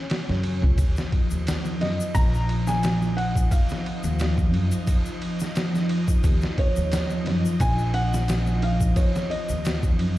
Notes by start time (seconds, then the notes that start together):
Already playing: C#4 C#5
0.10 snare, ride
0.29 F#2, snare
0.43 ride
0.62 C#2, kick
0.78 D#2 F3 D#5, kick, ride, shaker
0.96 snare, shaker
1.12 kick, ride
1.31 D#2, shaker
1.47 snare, ride, shaker
1.65 shaker
1.81 F#2 D#5, snare, ride
2.00 shaker
2.15 A#1 A#5, kick, ride, shaker
2.34 shaker
2.49 ride
2.67 G#5, snare, shaker
2.83 snare, ride, shaker
3.02 shaker
3.17 F#5, ride
3.36 kick, shaker
3.51 F5, kick, ride, shaker
3.69 snare, shaker
3.86 ride
4.03 D#2, shaker
4.19 snare, ride, shaker
4.38 kick, shaker
4.53 F#2, ride
4.72 ride, shaker
4.87 kick, ride, shaker
5.06 shaker
5.22 ride
5.40 snare, shaker
5.55 snare, ride, shaker
5.75 snare, shaker
5.89 ride
6.08 kick, shaker
6.24 D#2, kick, ride, shaker
6.41 snare, shaker
6.58 C#5, kick, ride
6.76 D#2, shaker
6.92 snare, ride, shaker
7.10 shaker
7.26 F#2, snare, ride
7.45 shaker
7.60 A#1 G#5, kick, ride, shaker
7.78 shaker
7.94 F#5, ride
8.13 snare, shaker
8.28 snare, ride, shaker
8.47 shaker
8.62 F5, ride
8.81 kick, shaker
8.96 C#5, kick, ride, shaker
9.15 snare, shaker
9.30 D#5, ride
9.49 D#2, shaker
9.65 snare, ride, shaker
9.83 kick, shaker
9.99 F#2, ride